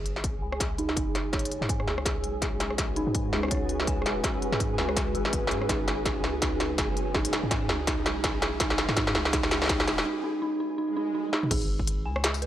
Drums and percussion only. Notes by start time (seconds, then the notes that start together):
0.06 closed hi-hat
0.16 snare
0.24 kick, closed hi-hat
0.52 cross-stick
0.60 kick, snare, closed hi-hat
0.78 closed hi-hat
0.89 snare
0.96 kick, closed hi-hat
1.15 cross-stick, snare, closed hi-hat
1.33 kick, snare, closed hi-hat
1.39 closed hi-hat
1.45 closed hi-hat
1.51 closed hi-hat
1.62 snare
1.69 kick, closed hi-hat
1.80 cross-stick
1.88 snare
1.98 cross-stick
2.05 kick, snare, closed hi-hat
2.24 closed hi-hat
2.42 kick, snare, closed hi-hat
2.60 snare, closed hi-hat
2.70 cross-stick
2.78 kick, snare, closed hi-hat
2.96 closed hi-hat
3.15 kick, closed hi-hat
3.33 snare
3.43 cross-stick
3.45 cross-stick
3.48 kick, cross-stick
3.51 cross-stick, closed hi-hat
3.55 cross-stick
3.57 cross-stick
3.69 closed hi-hat
3.80 snare
3.87 kick, closed hi-hat
4.02 cross-stick
4.06 snare, closed hi-hat
4.24 kick, snare, closed hi-hat
4.42 closed hi-hat
4.53 snare
4.60 kick, closed hi-hat
4.78 snare
4.89 cross-stick
4.96 kick, snare, closed hi-hat
5.15 closed hi-hat
5.25 snare
5.33 kick, closed hi-hat
5.47 snare, closed hi-hat
5.62 cross-stick
5.69 kick, snare, closed hi-hat
5.88 snare, closed hi-hat
6.05 kick, snare, closed hi-hat
6.24 snare
6.42 kick, snare, closed hi-hat
6.60 snare, closed hi-hat
6.78 kick, snare, closed hi-hat
6.97 closed hi-hat
7.14 kick, snare
7.25 closed hi-hat
7.33 snare, closed hi-hat
7.51 kick, snare, closed hi-hat
7.69 snare
7.87 kick, snare, closed hi-hat
8.06 snare, closed hi-hat
8.24 kick, snare, closed hi-hat
8.42 snare, closed hi-hat
8.60 kick, snare, closed hi-hat
8.70 snare
8.78 snare, closed hi-hat
8.89 snare
8.96 kick, snare, closed hi-hat
9.07 snare
9.15 snare
9.25 snare
9.33 kick, snare, closed hi-hat
9.43 snare
9.51 snare, closed hi-hat
9.62 snare
9.64 snare
9.66 snare
9.68 kick, snare
9.69 snare, closed hi-hat
9.80 snare
9.88 snare, closed hi-hat
9.98 snare
11.33 snare
11.43 mid tom
11.51 kick, closed hi-hat, crash
11.61 tambourine
11.79 kick
11.87 closed hi-hat
12.16 cross-stick
12.24 snare, closed hi-hat
12.34 tambourine
12.42 closed hi-hat